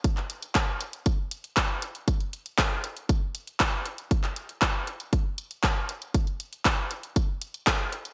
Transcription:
\new DrumStaff \with { instrumentName = "Drums" } \drummode { \time 4/4 \tempo 4 = 118 <hh bd>16 <hc hh>16 hh16 hh16 <hc hh bd>8 hh16 hh16 <hh bd>8 hh16 hh16 <hc hh bd>8 hh16 hh16 | <hh bd>16 hh16 hh16 hh16 <hc hh bd>8 hh16 hh16 <hh bd>8 hh16 hh16 <hc hh bd>8 hh16 hh16 | <hh bd>16 <hc hh>16 hh16 hh16 <hc hh bd>8 hh16 hh16 <hh bd>8 hh16 hh16 <hc hh bd>8 hh16 hh16 | <hh bd>16 hh16 hh16 hh16 <hc hh bd>8 hh16 hh16 <hh bd>8 hh16 hh16 <hc hh bd>8 hh16 hh16 | }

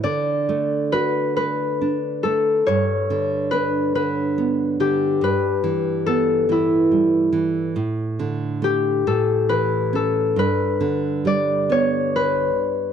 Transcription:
<<
  \new Staff \with { instrumentName = "Harp" } { \time 6/8 \key g \lydian \tempo 4. = 46 d''4 b'8 b'4 a'8 | cis''4 b'8 b'4 g'8 | b'4 a'8 e'4.~ | e'4 g'8 a'8 b'8 a'8 |
b'4 d''8 cis''8 b'4 | }
  \new Staff \with { instrumentName = "Nylon-string guitar" } { \clef bass \time 6/8 \key g \lydian d8 a8 fis'8 a8 d'8 a8 | g,8 d8 d'8 d8 b8 d8 | g,8 e8 b8 e8 g8 e8 | a,8 d8 a8 a,8 e8 cis'8 |
g,8 d8 g8 b4. | }
>>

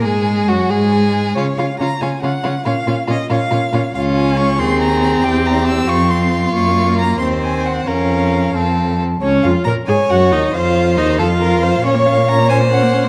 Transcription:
<<
  \new Staff \with { instrumentName = "Violin" } { \time 6/8 \key bes \minor \tempo 4. = 92 aes''4 ges''8 aes''4. | des''8 f''8 bes''8 aes''8 ges''4 | f''4 ees''8 f''4. | f''8 aes''8 des'''8 c'''8 bes''4 |
g''8 bes''8 e'''8 des'''8 c'''4 | des'''4 bes''8 c'''8 aes''8 ges''8 | f''2~ f''8 r8 | des''8 f''8 bes''8 aes''8 ges''8 ees''8 |
f''4 ees''8 f''4. | des''8 f''8 bes''8 aes''8 ges''4 | }
  \new Staff \with { instrumentName = "Violin" } { \time 6/8 \key bes \minor aes'4 ges'8 aes'4. | f'8 f'8 f'8 f'8 f'8 f'8 | f'8 f'8 f'8 f'8 f'8 f'8 | f'4. aes'4. |
g'4. f'4.~ | f'4. c''4. | bes'4. a'4 r8 | r4. des''4. |
c''4. a'8 bes'8 c''8 | des''4. c''4. | }
  \new Staff \with { instrumentName = "Viola" } { \time 6/8 \key bes \minor aes4 ges8 aes4. | des'8 des'8 des'8 des'8 des'8 des'8 | des'8 des'8 des'8 des'8 des'8 des'8 | des'4. c'4.~ |
c'2. | bes4. c'4. | des'4. c'4 r8 | des'8 f'8 bes'8 aes'8 ges'8 ees'8 |
f'4 ees'8 f'4. | des'16 bes16 des'16 bes16 des'16 bes16 des'16 bes16 des'16 bes16 des'16 bes16 | }
  \new Staff \with { instrumentName = "Cello" } { \clef bass \time 6/8 \key bes \minor aes,4 ges,8 aes,4. | des8 des8 des8 des8 des8 des8 | bes,8 bes,8 bes,8 bes,8 bes,8 bes,8 | des,4. ees,4. |
e,4. f,4. | ges,4. ees,4. | f,4. f,4. | des,8 f,8 bes,8 aes,8 ges,8 ees,8 |
f,4 ees,8 f,4. | bes,2. | }
>>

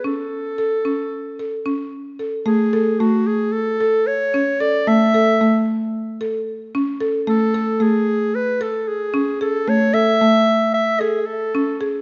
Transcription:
<<
  \new Staff \with { instrumentName = "Clarinet" } { \time 9/8 \key a \major \tempo 4. = 75 a'2.~ a'8 r4 | gis'4 fis'8 gis'8 a'4 cis''4 d''8 | e''4. r2. | a'4 gis'4 b'8 a'8 gis'4 a'8 |
cis''8 e''4. e''8 gis'8 a'4 r8 | }
  \new Staff \with { instrumentName = "Marimba" } { \time 9/8 \key a \major cis'4 a'8 cis'4 a'8 cis'4 a'8 | a8 a'8 a4 r8 a'4 cis'8 a'8 | a8 a'8 a4 r8 a'4 cis'8 a'8 | a8 a'8 a4 r8 a'4 cis'8 gis'8 |
a8 a'8 a4 r8 a'4 cis'8 gis'8 | }
>>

